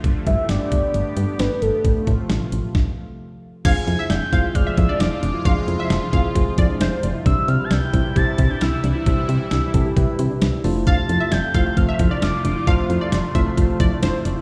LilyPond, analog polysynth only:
\new Staff \with { instrumentName = "Analog polysynth" } { \time 4/4 \key f \lydian \tempo 4 = 133 r1 | r1 | f''16 r8 e''8 r16 f''16 r8 e''16 r16 d''8 r8. | f''16 r8 e''8 r16 f''16 r8. d''16 r16 c''8. r16 |
r1 | r1 | f''16 r8 e''8 r16 f''16 r8 e''16 r16 d''8 r8. | f''16 r8 d''8 r16 e''16 r8. d''16 r16 c''8. r16 | }